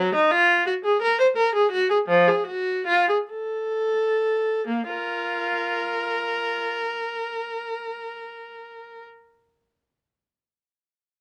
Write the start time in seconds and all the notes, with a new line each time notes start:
Already playing: F#3
0.15 D#4
0.31 F4
0.66 F#4
0.85 G#4
1.02 A#4
1.19 C5
1.37 A#4
1.55 G#4
1.72 F#4
1.90 G#4
2.08 F3
2.28 G#4
2.47 F#4
2.87 F4
3.09 G#4
3.31 A4
4.67 A#3
4.88 F4 A#4